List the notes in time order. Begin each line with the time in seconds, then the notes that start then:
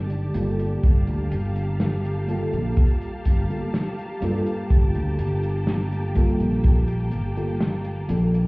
Already playing: G1 G4 D5 A5
0.10 closed hi-hat
0.34 G1 G3 A#3 F4 A4, closed hi-hat
0.59 closed hi-hat
0.83 G1 A#3 F5 A5, kick, closed hi-hat
1.07 D2, closed hi-hat
1.31 G1, closed hi-hat
1.56 closed hi-hat
1.80 snare, closed hi-hat
2.05 closed hi-hat
2.27 G3 A#3 F4 A4, closed hi-hat
2.53 A#1, closed hi-hat
2.77 kick, closed hi-hat
3.01 closed hi-hat
3.25 G1, kick, closed hi-hat
3.49 G3 A#3 F4 A4, closed hi-hat
3.74 snare, closed hi-hat
3.99 closed hi-hat
4.21 G2 G3 A#3 F4 A4, closed hi-hat
4.46 closed hi-hat
4.70 G1 G5, kick, closed hi-hat
4.95 D2, closed hi-hat
5.19 G1, closed hi-hat
5.43 closed hi-hat
5.67 snare, closed hi-hat
5.92 closed hi-hat
6.14 G3 A#3 F4 A4, kick, closed hi-hat
6.40 A#1, closed hi-hat
6.64 kick, closed hi-hat
6.88 closed hi-hat
7.11 G1, closed hi-hat
7.36 G3 A#3 F4 A4, closed hi-hat
7.61 snare, closed hi-hat
7.84 closed hi-hat
8.08 A#1 F3 A#3 D4 A4, closed hi-hat
8.34 closed hi-hat